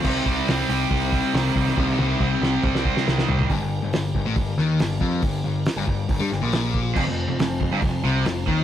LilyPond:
<<
  \new Staff \with { instrumentName = "Tonewheel organ" } { \time 4/4 \key g \minor \tempo 4 = 139 <c' ees' g' c''>1~ | <c' ees' g' c''>1 | <bes d' g' bes'>1~ | <bes d' g' bes'>1 |
<f c' f' c''>1 | }
  \new Staff \with { instrumentName = "Overdriven electric guitar" } { \clef bass \time 4/4 \key g \minor c8 g8 c'8 g'8 g8 c'8 ees8 g8 | c8 g8 c'8 g'8 g8 c'8 ees8 g8 | r1 | r1 |
f,16 f,8 f,16 f,8 f,16 g,16 f,8 c8 f,8 ees8 | }
  \new Staff \with { instrumentName = "Distorted electric guitar" } { \clef bass \time 4/4 \key g \minor <c g c'>1 | <c g c'>1 | g,16 g,8 g,16 g,8 g,16 a,16 g,8 ees8 g,8 f8 | g,8 g,8 r16 g,16 g,8 g,16 g16 g,16 bes,4~ bes,16 |
f,16 f,8 f,16 f,8 f,16 g,16 f,8 c8 f,8 ees8 | }
  \new Staff \with { instrumentName = "Picked electric bass" } { \clef bass \time 4/4 \key g \minor c,8 c,8 c,8 c,8 c,4 c,8 c,8 | c,8 c,8 c,8 c,8 c,4 c,8 c,8 | g,,16 g,,8 g,,16 g,,8 g,,16 a,,16 g,,8 ees,8 g,,8 f,8 | g,,8 g,,8 r16 g,,16 g,,8 g,,16 g,16 g,,16 bes,,4~ bes,,16 |
f,,16 f,,8 f,,16 f,,8 f,,16 g,,16 f,,8 c,8 f,,8 ees,8 | }
  \new DrumStaff \with { instrumentName = "Drums" } \drummode { \time 4/4 <cymc bd>8 <hho bd>8 <hho sn>8 hho8 <hho bd>8 <hho bd>8 <hho sn>8 <hho bd>16 sn16 | <bd tommh>8 tommh8 bd8 sn8 <bd toml>16 sn16 bd16 sn16 sn16 sn16 tomfh16 tomfh16 | <hho bd>4 <hho sn>8 bd8 <hho bd>8 sn8 <hho sn>8 bd8 | <hho bd>4 <hho sn>8 bd8 <hho bd>8 sn8 <hho sn>8 bd8 |
<cymc bd>4 <hho sn>8 bd8 <hho bd>4 <hho sn>8 bd8 | }
>>